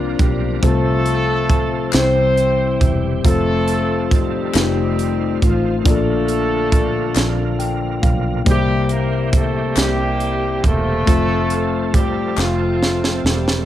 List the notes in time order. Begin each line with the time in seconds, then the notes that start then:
Already playing: C2 F3 A#3 C4 D4 F4 A#4 C5
0.19 B1 G3 G4, kick, closed hi-hat
0.62 C2 C3 F3 A3 C4 F4 A4 C5, kick, closed hi-hat
1.06 closed hi-hat
1.50 kick, closed hi-hat
1.93 C2 C3 E3 G3 C4 E4 G4 C5, snare, clap, closed hi-hat
2.37 closed hi-hat
2.81 E1, kick, closed hi-hat
3.24 F1 F3 A3 C4 F4 A4 C5, kick, closed hi-hat
3.68 closed hi-hat
4.11 G3 C4 D#4 G4, kick, closed hi-hat
4.54 F1 D#3 A3 C4 D#4 F4 B4, snare, clap, closed hi-hat
4.62 C5
4.99 closed hi-hat
5.42 A1 F3 F4, kick, closed hi-hat
5.84 A#1 A#2 D3 F3 A#3 D4 F4 D5, kick, closed hi-hat
5.88 A3 D4 F4 A4
6.28 closed hi-hat
6.72 kick, closed hi-hat
7.15 A#1, snare, clap, closed hi-hat
7.59 G5, closed hi-hat
8.02 B1 F5, kick, closed hi-hat
8.45 C2 C3 G3 A#3 C4 D#4 G4 C5, kick, closed hi-hat
8.49 G3 E4 G4 E5
8.89 A#3 A#4, closed hi-hat
9.33 A3 A4, kick, closed hi-hat
9.77 C2 G3 A#3 E4 G4, snare, clap, closed hi-hat
10.20 closed hi-hat
10.64 E1 A3 C4 F4 A4, kick, closed hi-hat
11.06 F1 F3 A3 C4 F4 A4 C5, kick, closed hi-hat
11.50 closed hi-hat
11.94 G3 G4, kick, closed hi-hat
12.37 F1 F3 A3 C4 F4, snare, clap
12.83 snare
13.04 snare
13.24 E1 G3 G4, snare
13.48 snare